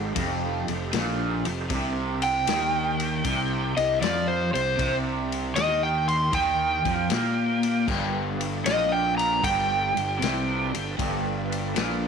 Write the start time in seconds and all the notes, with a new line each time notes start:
Already playing: G#1 G#2 D#4 G4 A4 C5
0.15 F1 F2, kick, ride
0.68 F1 F2, ride
0.93 A#1 A#2, snare, ride
1.45 F1 F2, ride
1.70 C2 C3 D4 G4 A#4 E5, kick, ride
2.22 G5, ride
2.47 D#2 D#3, snare, ride
3.00 ride
3.24 C2 C3, kick, ride
3.77 C2 C3 D#5, ride
4.01 F2 F3 D5, snare, ride
4.28 C5
4.53 C2 C3 C5, ride
4.77 C2 C3 D4 G4 A#4 E5, kick, ride
5.32 ride
5.56 D#2 D#3 D#5, snare, ride
5.83 G5
6.08 C6, ride
6.32 D#2 D#3 G5, kick, ride
6.85 F2 F3, kick, ride
7.09 A#2 A#3, snare, ride
7.63 ride
7.87 G1 G2 D4 F4 A4 B4, kick, crash
8.41 ride
8.64 A#1 A#2 D#5, snare, ride
8.92 G5
9.18 A#5, ride
9.41 G1 G2 G5, kick, ride
9.95 G1 G2, ride
10.19 C2 C3, ride
10.24 snare
10.72 G1 G2, ride
10.98 G1 G2 F4 A4 B4 D5, kick, ride
11.52 ride
11.75 A#1 A#2, snare, ride